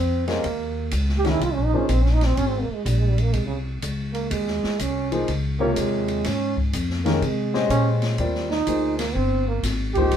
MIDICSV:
0, 0, Header, 1, 6, 480
1, 0, Start_track
1, 0, Tempo, 484653
1, 435, Time_signature, 4, 2, 24, 8
1, 10069, End_track
2, 0, Start_track
2, 0, Title_t, "Grand piano"
2, 0, Program_c, 0, 0
2, 272, Note_on_c, 0, 56, 63
2, 273, Note_on_c, 0, 61, 64
2, 273, Note_on_c, 0, 67, 62
2, 275, Note_on_c, 0, 72, 65
2, 275, Note_on_c, 0, 75, 69
2, 418, Note_off_c, 0, 56, 0
2, 419, Note_off_c, 0, 61, 0
2, 419, Note_off_c, 0, 67, 0
2, 420, Note_off_c, 0, 72, 0
2, 420, Note_off_c, 0, 75, 0
2, 1228, Note_on_c, 0, 56, 66
2, 1230, Note_on_c, 0, 61, 68
2, 1230, Note_on_c, 0, 67, 67
2, 1231, Note_on_c, 0, 51, 71
2, 1234, Note_on_c, 0, 70, 78
2, 1376, Note_off_c, 0, 56, 0
2, 1377, Note_off_c, 0, 51, 0
2, 1377, Note_off_c, 0, 61, 0
2, 1377, Note_off_c, 0, 67, 0
2, 1379, Note_off_c, 0, 70, 0
2, 1712, Note_on_c, 0, 53, 72
2, 1712, Note_on_c, 0, 63, 67
2, 1715, Note_on_c, 0, 72, 75
2, 1716, Note_on_c, 0, 58, 65
2, 1719, Note_on_c, 0, 68, 65
2, 1858, Note_off_c, 0, 53, 0
2, 1858, Note_off_c, 0, 63, 0
2, 1860, Note_off_c, 0, 58, 0
2, 1860, Note_off_c, 0, 72, 0
2, 1861, Note_off_c, 0, 68, 0
2, 5066, Note_on_c, 0, 53, 77
2, 5069, Note_on_c, 0, 68, 67
2, 5070, Note_on_c, 0, 58, 62
2, 5070, Note_on_c, 0, 63, 66
2, 5077, Note_on_c, 0, 72, 76
2, 5214, Note_off_c, 0, 53, 0
2, 5216, Note_off_c, 0, 58, 0
2, 5216, Note_off_c, 0, 63, 0
2, 5216, Note_off_c, 0, 68, 0
2, 5220, Note_off_c, 0, 72, 0
2, 5547, Note_on_c, 0, 67, 76
2, 5550, Note_on_c, 0, 65, 72
2, 5551, Note_on_c, 0, 48, 69
2, 5552, Note_on_c, 0, 70, 71
2, 5554, Note_on_c, 0, 73, 83
2, 6158, Note_off_c, 0, 67, 0
2, 6160, Note_off_c, 0, 48, 0
2, 6160, Note_off_c, 0, 65, 0
2, 6161, Note_off_c, 0, 70, 0
2, 6162, Note_off_c, 0, 73, 0
2, 6984, Note_on_c, 0, 51, 81
2, 6987, Note_on_c, 0, 56, 79
2, 6989, Note_on_c, 0, 61, 77
2, 6990, Note_on_c, 0, 70, 90
2, 6994, Note_on_c, 0, 67, 68
2, 7133, Note_off_c, 0, 51, 0
2, 7134, Note_off_c, 0, 56, 0
2, 7135, Note_off_c, 0, 61, 0
2, 7136, Note_off_c, 0, 70, 0
2, 7138, Note_off_c, 0, 67, 0
2, 7466, Note_on_c, 0, 56, 85
2, 7468, Note_on_c, 0, 61, 70
2, 7469, Note_on_c, 0, 67, 76
2, 7470, Note_on_c, 0, 72, 76
2, 7472, Note_on_c, 0, 75, 85
2, 8077, Note_off_c, 0, 56, 0
2, 8078, Note_off_c, 0, 61, 0
2, 8079, Note_off_c, 0, 67, 0
2, 8080, Note_off_c, 0, 72, 0
2, 8081, Note_off_c, 0, 75, 0
2, 8111, Note_on_c, 0, 55, 64
2, 8114, Note_on_c, 0, 70, 59
2, 8115, Note_on_c, 0, 60, 58
2, 8117, Note_on_c, 0, 65, 58
2, 8119, Note_on_c, 0, 74, 68
2, 8398, Note_off_c, 0, 55, 0
2, 8399, Note_off_c, 0, 70, 0
2, 8400, Note_off_c, 0, 60, 0
2, 8401, Note_off_c, 0, 65, 0
2, 8402, Note_off_c, 0, 74, 0
2, 8583, Note_on_c, 0, 53, 64
2, 8586, Note_on_c, 0, 63, 55
2, 8588, Note_on_c, 0, 58, 54
2, 8593, Note_on_c, 0, 68, 61
2, 8594, Note_on_c, 0, 72, 70
2, 8874, Note_off_c, 0, 53, 0
2, 8875, Note_off_c, 0, 63, 0
2, 8876, Note_off_c, 0, 58, 0
2, 8879, Note_off_c, 0, 68, 0
2, 8879, Note_off_c, 0, 72, 0
2, 9873, Note_on_c, 0, 58, 63
2, 9874, Note_on_c, 0, 53, 78
2, 9877, Note_on_c, 0, 63, 66
2, 9879, Note_on_c, 0, 56, 68
2, 9880, Note_on_c, 0, 72, 91
2, 10069, Note_off_c, 0, 53, 0
2, 10069, Note_off_c, 0, 56, 0
2, 10069, Note_off_c, 0, 58, 0
2, 10069, Note_off_c, 0, 63, 0
2, 10069, Note_off_c, 0, 72, 0
2, 10069, End_track
3, 0, Start_track
3, 0, Title_t, "Trombone"
3, 0, Program_c, 1, 57
3, 0, Note_on_c, 1, 60, 86
3, 233, Note_off_c, 1, 60, 0
3, 275, Note_on_c, 1, 58, 82
3, 876, Note_off_c, 1, 58, 0
3, 1169, Note_on_c, 1, 67, 95
3, 1287, Note_on_c, 1, 64, 88
3, 1302, Note_off_c, 1, 67, 0
3, 1414, Note_on_c, 1, 65, 99
3, 1429, Note_off_c, 1, 64, 0
3, 1520, Note_on_c, 1, 61, 97
3, 1535, Note_off_c, 1, 65, 0
3, 1635, Note_on_c, 1, 63, 106
3, 1650, Note_off_c, 1, 61, 0
3, 1761, Note_on_c, 1, 61, 88
3, 1776, Note_off_c, 1, 63, 0
3, 1883, Note_on_c, 1, 60, 85
3, 1898, Note_off_c, 1, 61, 0
3, 2004, Note_on_c, 1, 61, 79
3, 2019, Note_off_c, 1, 60, 0
3, 2112, Note_on_c, 1, 63, 106
3, 2127, Note_off_c, 1, 61, 0
3, 2226, Note_on_c, 1, 60, 86
3, 2241, Note_off_c, 1, 63, 0
3, 2345, Note_on_c, 1, 61, 105
3, 2360, Note_off_c, 1, 60, 0
3, 2463, Note_on_c, 1, 60, 79
3, 2478, Note_off_c, 1, 61, 0
3, 2583, Note_on_c, 1, 58, 83
3, 2597, Note_off_c, 1, 60, 0
3, 2717, Note_on_c, 1, 56, 73
3, 2732, Note_off_c, 1, 58, 0
3, 2834, Note_on_c, 1, 55, 74
3, 2848, Note_off_c, 1, 56, 0
3, 2959, Note_on_c, 1, 56, 86
3, 2974, Note_off_c, 1, 55, 0
3, 3057, Note_on_c, 1, 55, 80
3, 3072, Note_off_c, 1, 56, 0
3, 3188, Note_on_c, 1, 58, 87
3, 3203, Note_off_c, 1, 55, 0
3, 3301, Note_on_c, 1, 56, 80
3, 3316, Note_off_c, 1, 58, 0
3, 3421, Note_off_c, 1, 56, 0
3, 3427, Note_on_c, 1, 49, 77
3, 3536, Note_off_c, 1, 49, 0
3, 4091, Note_on_c, 1, 58, 82
3, 4267, Note_on_c, 1, 56, 83
3, 4282, Note_off_c, 1, 58, 0
3, 4758, Note_on_c, 1, 61, 93
3, 4773, Note_off_c, 1, 56, 0
3, 5074, Note_off_c, 1, 61, 0
3, 5542, Note_on_c, 1, 58, 96
3, 5713, Note_on_c, 1, 56, 86
3, 5727, Note_off_c, 1, 58, 0
3, 6205, Note_on_c, 1, 61, 103
3, 6220, Note_off_c, 1, 56, 0
3, 6517, Note_off_c, 1, 61, 0
3, 6976, Note_on_c, 1, 58, 87
3, 7160, Note_on_c, 1, 56, 79
3, 7174, Note_off_c, 1, 58, 0
3, 7625, Note_off_c, 1, 56, 0
3, 7631, Note_on_c, 1, 61, 98
3, 7822, Note_off_c, 1, 61, 0
3, 8422, Note_on_c, 1, 63, 98
3, 8872, Note_off_c, 1, 63, 0
3, 8896, Note_on_c, 1, 58, 88
3, 9054, Note_on_c, 1, 60, 102
3, 9068, Note_off_c, 1, 58, 0
3, 9381, Note_off_c, 1, 60, 0
3, 9387, Note_on_c, 1, 58, 82
3, 9539, Note_off_c, 1, 58, 0
3, 9847, Note_on_c, 1, 67, 103
3, 10069, Note_off_c, 1, 67, 0
3, 10069, End_track
4, 0, Start_track
4, 0, Title_t, "Upright bass"
4, 0, Program_c, 2, 32
4, 0, Note_on_c, 2, 41, 78
4, 419, Note_off_c, 2, 41, 0
4, 438, Note_on_c, 2, 39, 89
4, 902, Note_off_c, 2, 39, 0
4, 910, Note_on_c, 2, 37, 91
4, 1378, Note_off_c, 2, 37, 0
4, 1391, Note_on_c, 2, 36, 80
4, 1554, Note_off_c, 2, 36, 0
4, 1554, Note_on_c, 2, 34, 59
4, 1702, Note_off_c, 2, 34, 0
4, 1708, Note_on_c, 2, 32, 56
4, 1860, Note_off_c, 2, 32, 0
4, 1874, Note_on_c, 2, 34, 93
4, 2340, Note_off_c, 2, 34, 0
4, 2352, Note_on_c, 2, 32, 91
4, 2649, Note_off_c, 2, 32, 0
4, 2827, Note_on_c, 2, 34, 95
4, 3296, Note_off_c, 2, 34, 0
4, 3309, Note_on_c, 2, 36, 81
4, 3777, Note_off_c, 2, 36, 0
4, 3791, Note_on_c, 2, 37, 85
4, 4258, Note_off_c, 2, 37, 0
4, 4266, Note_on_c, 2, 39, 94
4, 4565, Note_off_c, 2, 39, 0
4, 4752, Note_on_c, 2, 36, 86
4, 5218, Note_off_c, 2, 36, 0
4, 5236, Note_on_c, 2, 37, 88
4, 5700, Note_off_c, 2, 37, 0
4, 5711, Note_on_c, 2, 39, 85
4, 6177, Note_off_c, 2, 39, 0
4, 6193, Note_on_c, 2, 44, 88
4, 6658, Note_off_c, 2, 44, 0
4, 6669, Note_on_c, 2, 41, 97
4, 7136, Note_off_c, 2, 41, 0
4, 7145, Note_on_c, 2, 48, 86
4, 7614, Note_off_c, 2, 48, 0
4, 7620, Note_on_c, 2, 46, 84
4, 8092, Note_off_c, 2, 46, 0
4, 8105, Note_on_c, 2, 39, 89
4, 8574, Note_off_c, 2, 39, 0
4, 8583, Note_on_c, 2, 38, 83
4, 9053, Note_off_c, 2, 38, 0
4, 9066, Note_on_c, 2, 31, 94
4, 9532, Note_off_c, 2, 31, 0
4, 9538, Note_on_c, 2, 32, 82
4, 10011, Note_off_c, 2, 32, 0
4, 10030, Note_on_c, 2, 34, 87
4, 10069, Note_off_c, 2, 34, 0
4, 10069, End_track
5, 0, Start_track
5, 0, Title_t, "Muted upright bass strokes"
5, 2664, Note_on_c, 9, 29, 44
5, 2763, Note_off_c, 9, 29, 0
5, 4592, Note_on_c, 9, 29, 42
5, 4691, Note_off_c, 9, 29, 0
5, 10069, End_track
6, 0, Start_track
6, 0, Title_t, "Drums"
6, 272, Note_on_c, 9, 51, 48
6, 277, Note_on_c, 9, 38, 53
6, 371, Note_off_c, 9, 51, 0
6, 376, Note_off_c, 9, 38, 0
6, 434, Note_on_c, 9, 51, 65
6, 533, Note_off_c, 9, 51, 0
6, 905, Note_on_c, 9, 44, 66
6, 905, Note_on_c, 9, 51, 74
6, 1004, Note_off_c, 9, 44, 0
6, 1004, Note_off_c, 9, 51, 0
6, 1079, Note_on_c, 9, 38, 28
6, 1178, Note_off_c, 9, 38, 0
6, 1233, Note_on_c, 9, 51, 48
6, 1240, Note_on_c, 9, 38, 42
6, 1332, Note_off_c, 9, 51, 0
6, 1339, Note_off_c, 9, 38, 0
6, 1400, Note_on_c, 9, 51, 57
6, 1499, Note_off_c, 9, 51, 0
6, 1870, Note_on_c, 9, 44, 56
6, 1870, Note_on_c, 9, 51, 69
6, 1969, Note_off_c, 9, 44, 0
6, 1969, Note_off_c, 9, 51, 0
6, 2038, Note_on_c, 9, 38, 29
6, 2137, Note_off_c, 9, 38, 0
6, 2190, Note_on_c, 9, 51, 51
6, 2193, Note_on_c, 9, 38, 49
6, 2289, Note_off_c, 9, 51, 0
6, 2292, Note_off_c, 9, 38, 0
6, 2349, Note_on_c, 9, 51, 61
6, 2448, Note_off_c, 9, 51, 0
6, 2832, Note_on_c, 9, 44, 54
6, 2832, Note_on_c, 9, 51, 74
6, 2931, Note_off_c, 9, 44, 0
6, 2931, Note_off_c, 9, 51, 0
6, 3148, Note_on_c, 9, 51, 53
6, 3247, Note_off_c, 9, 51, 0
6, 3303, Note_on_c, 9, 51, 63
6, 3402, Note_off_c, 9, 51, 0
6, 3786, Note_on_c, 9, 44, 62
6, 3786, Note_on_c, 9, 51, 71
6, 3885, Note_off_c, 9, 44, 0
6, 3885, Note_off_c, 9, 51, 0
6, 4106, Note_on_c, 9, 51, 50
6, 4205, Note_off_c, 9, 51, 0
6, 4268, Note_on_c, 9, 51, 81
6, 4367, Note_off_c, 9, 51, 0
6, 4430, Note_on_c, 9, 38, 33
6, 4529, Note_off_c, 9, 38, 0
6, 4591, Note_on_c, 9, 38, 47
6, 4690, Note_off_c, 9, 38, 0
6, 4748, Note_on_c, 9, 44, 73
6, 4748, Note_on_c, 9, 51, 75
6, 4847, Note_off_c, 9, 44, 0
6, 4847, Note_off_c, 9, 51, 0
6, 5070, Note_on_c, 9, 51, 50
6, 5169, Note_off_c, 9, 51, 0
6, 5228, Note_on_c, 9, 51, 62
6, 5327, Note_off_c, 9, 51, 0
6, 5706, Note_on_c, 9, 44, 71
6, 5706, Note_on_c, 9, 51, 72
6, 5805, Note_off_c, 9, 44, 0
6, 5805, Note_off_c, 9, 51, 0
6, 6024, Note_on_c, 9, 51, 51
6, 6123, Note_off_c, 9, 51, 0
6, 6184, Note_on_c, 9, 51, 79
6, 6189, Note_on_c, 9, 38, 42
6, 6283, Note_off_c, 9, 51, 0
6, 6288, Note_off_c, 9, 38, 0
6, 6507, Note_on_c, 9, 36, 60
6, 6606, Note_off_c, 9, 36, 0
6, 6668, Note_on_c, 9, 44, 71
6, 6668, Note_on_c, 9, 51, 82
6, 6767, Note_off_c, 9, 44, 0
6, 6767, Note_off_c, 9, 51, 0
6, 6834, Note_on_c, 9, 38, 30
6, 6933, Note_off_c, 9, 38, 0
6, 6991, Note_on_c, 9, 51, 51
6, 6997, Note_on_c, 9, 38, 53
6, 7090, Note_off_c, 9, 51, 0
6, 7097, Note_off_c, 9, 38, 0
6, 7153, Note_on_c, 9, 51, 59
6, 7252, Note_off_c, 9, 51, 0
6, 7469, Note_on_c, 9, 38, 50
6, 7568, Note_off_c, 9, 38, 0
6, 7628, Note_on_c, 9, 44, 56
6, 7628, Note_on_c, 9, 51, 70
6, 7727, Note_off_c, 9, 44, 0
6, 7727, Note_off_c, 9, 51, 0
6, 7941, Note_on_c, 9, 51, 51
6, 7946, Note_on_c, 9, 38, 51
6, 8040, Note_off_c, 9, 51, 0
6, 8045, Note_off_c, 9, 38, 0
6, 8102, Note_on_c, 9, 51, 65
6, 8201, Note_off_c, 9, 51, 0
6, 8270, Note_on_c, 9, 38, 32
6, 8369, Note_off_c, 9, 38, 0
6, 8428, Note_on_c, 9, 38, 50
6, 8527, Note_off_c, 9, 38, 0
6, 8583, Note_on_c, 9, 44, 59
6, 8583, Note_on_c, 9, 51, 76
6, 8682, Note_off_c, 9, 44, 0
6, 8682, Note_off_c, 9, 51, 0
6, 8901, Note_on_c, 9, 51, 78
6, 8906, Note_on_c, 9, 38, 55
6, 9000, Note_off_c, 9, 51, 0
6, 9005, Note_off_c, 9, 38, 0
6, 9542, Note_on_c, 9, 44, 63
6, 9542, Note_on_c, 9, 51, 79
6, 9547, Note_on_c, 9, 38, 38
6, 9641, Note_off_c, 9, 44, 0
6, 9641, Note_off_c, 9, 51, 0
6, 9646, Note_off_c, 9, 38, 0
6, 9857, Note_on_c, 9, 51, 50
6, 9866, Note_on_c, 9, 36, 57
6, 9956, Note_off_c, 9, 51, 0
6, 9965, Note_off_c, 9, 36, 0
6, 10017, Note_on_c, 9, 51, 72
6, 10069, Note_off_c, 9, 51, 0
6, 10069, End_track
0, 0, End_of_file